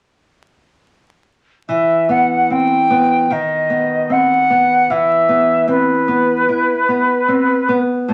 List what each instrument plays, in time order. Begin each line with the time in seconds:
1.69 nylon-string guitar E3, flute E5
2.09 nylon-string guitar B3, flute F#5
2.50 nylon-string guitar C4, flute G5
2.90 nylon-string guitar B3
3.30 nylon-string guitar D#3, flute D#5
3.70 nylon-string guitar B3
4.10 nylon-string guitar C4, flute F#5
4.50 nylon-string guitar B3
4.90 nylon-string guitar E3, flute E5
5.29 nylon-string guitar B3
5.68 nylon-string guitar C4, flute B4
6.08 nylon-string guitar B3
6.49 nylon-string guitar E4
6.88 nylon-string guitar B3
7.28 nylon-string guitar C4
7.69 nylon-string guitar B3
8.08 nylon-string guitar A2, flute A5